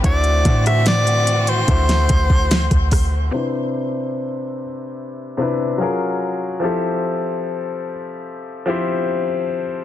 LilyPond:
<<
  \new Staff \with { instrumentName = "Soprano saxophone" } { \time 4/4 \key d \dorian \tempo 4 = 73 d''8. e''16 d''8. c''4.~ c''16 r8 | r1 | r1 | }
  \new Staff \with { instrumentName = "Grand piano" } { \time 4/4 \key d \dorian <d a e' fis' c''>8 <d a e' fis' c''>4 r8 <d a e' fis' c''>4. r8 | <c c' d' e' b'>4. r4 <c c' d' e' b'>8 <fis cis' eis' gis' ais'>4 | <f c' e' g' a'>4. r4 <f c' e' g' c''>4 r8 | }
  \new Staff \with { instrumentName = "String section" } { \time 4/4 \key d \dorian <e c' fis'>1 | r1 | r1 | }
  \new Staff \with { instrumentName = "808-style bass" } { \clef bass \time 4/4 \key d \dorian d,8 a,4. d,8 d,8. d,8. | r1 | r1 | }
  \new DrumStaff \with { instrumentName = "Drums" } \drummode { \time 4/4 <hh bd>16 hh16 <hh bd>16 <hh ss>16 <hh sn>16 hh16 hh16 hh16 <hh bd>16 <hh sn>16 <hh bd>16 bd16 <hh sn>16 <hh bd>16 <hho bd ss>8 | r4 r4 r4 r4 | r4 r4 r4 r4 | }
>>